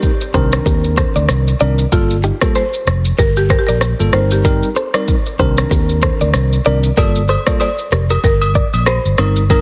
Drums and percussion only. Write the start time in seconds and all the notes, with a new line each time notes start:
0.02 kick, shaker
0.21 shaker
0.34 kick, shaker
0.52 cross-stick, shaker
0.66 kick, shaker
0.84 shaker
0.97 kick, cross-stick, shaker
1.16 shaker
1.29 cross-stick, shaker
1.48 shaker
1.60 shaker
1.78 shaker
1.92 kick, shaker
2.10 shaker
2.23 shaker
2.41 kick, cross-stick, shaker
2.55 shaker
2.73 shaker
2.87 cross-stick, shaker
3.05 shaker
3.18 kick, shaker
3.37 shaker
3.50 kick, shaker
3.68 shaker
3.81 cross-stick, shaker
4.00 shaker
4.13 cross-stick, shaker
4.31 shaker
4.45 kick, shaker
4.63 shaker
4.76 shaker
4.94 cross-stick, shaker
5.08 kick, shaker
5.26 shaker
5.39 kick, shaker
5.57 cross-stick, shaker
5.71 kick, shaker
5.89 shaker
6.02 kick, cross-stick, shaker
6.21 shaker
6.34 cross-stick, shaker
6.53 shaker
6.65 shaker
6.83 shaker
6.97 kick, high agogo, shaker
7.15 shaker
7.28 high agogo, shaker
7.47 kick, cross-stick, shaker
7.60 high agogo, shaker
7.79 shaker
7.92 cross-stick, shaker
8.10 high agogo, shaker
8.24 kick, shaker
8.42 high agogo, shaker
8.55 kick, shaker
8.74 high agogo, shaker
8.86 cross-stick, low woodblock, shaker
9.05 shaker
9.18 cross-stick, high agogo, shaker
9.36 shaker
9.50 kick, high agogo, shaker